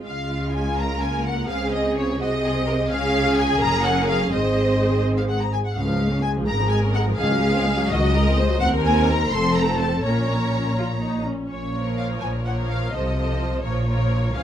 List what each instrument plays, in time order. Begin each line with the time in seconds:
0.06 double bass section C#2, cello section C#3, viola section G#3 F4, violin section F5
0.56 violin section G#5
0.79 violin section A#4 A#5
1.02 viola section A#3, violin section G#5
1.26 violin section F#5
1.48 double bass section C#2, cello section C#3, viola section C4 G#4, violin section G#4 F5
1.73 violin section D#5
1.97 violin section C#5
2.20 double bass section C2, cello section C3, viola section C4 G#4, violin section F#4 D#5
2.45 violin section G#4
2.67 violin section A#4
2.89 double bass section C#2, cello section C#3, viola section C#4 G#4, violin section G#4 F5
3.38 violin section G#5
3.61 double bass section F#1, cello section F#2, viola section C#4 A#4, violin section A#5
3.85 violin section F#5
4.09 violin section F5
4.32 double bass section G#1, cello section G#2, viola section C4 G#4, violin section C5 D#5
5.18 violin section F5
5.29 violin section F#5
5.40 violin section A#5
5.53 violin section G#5
5.65 violin section F#5
5.76 double bass section C#2, cello section C#2, viola section C#3 G#4, violin section F5
5.89 viola section F3
6.00 viola section G#3
6.11 viola section C#4
6.22 viola section G#3, violin section G#5
6.36 viola section F3
6.47 double bass section G#1, cello section G#2, viola section C#3, violin section A#4 A#5
6.60 viola section F3
6.70 viola section G#3, violin section G#5
6.84 viola section C#4
6.95 viola section G#3, violin section F#5
7.08 viola section F3
7.18 double bass section C#2, cello section C#2, viola section D#3, violin section G#4 F5
7.31 viola section F#3
7.43 viola section G#3
7.55 viola section C4
7.68 viola section G#3
7.80 viola section F#3
7.90 double bass section C#2, cello section C#2, viola section D#3, violin section F#4 D#5
8.03 viola section F#3
8.13 viola section G#3, violin section A#4
8.28 viola section C4
8.38 viola section G#3, violin section C5
8.50 viola section F#3
8.61 double bass section D#2, cello section D#2, viola section C4 A#4, violin section A#4 F#5
8.85 violin section G#5
9.09 violin section A#5
9.31 double bass section F1, cello section F2, viola section C4 A4, violin section A4 C6
9.57 violin section A#5
9.80 violin section A5
10.03 double bass section A#1, cello section A#2, viola section C#4 A#4, violin section C#5 A#5
10.78 viola section F4
11.02 viola section D#4
11.26 viola section C#4
11.50 double bass section A#1, cello section A#2, violin section C#5
11.74 viola section F3 F4, violin section A#4 C#5
11.98 violin section F5
12.20 double bass section A#1, cello section A#2, violin section G#5
12.45 viola section F3 F4, violin section A#4 C#5 F#5
12.69 violin section F5
12.92 double bass section C2, cello section C3, viola section F3 F4, violin section A4 C5 D#5
13.16 viola section F3 F4, violin section A4 C5
13.63 double bass section A#1, cello section A#2, viola section F3 F4, violin section A#4 C#5
13.88 viola section F3 F4, violin section A#4 C#5
14.35 double bass section C#2, cello section C#3, viola section F3 F4, violin section G#4 C#5 F5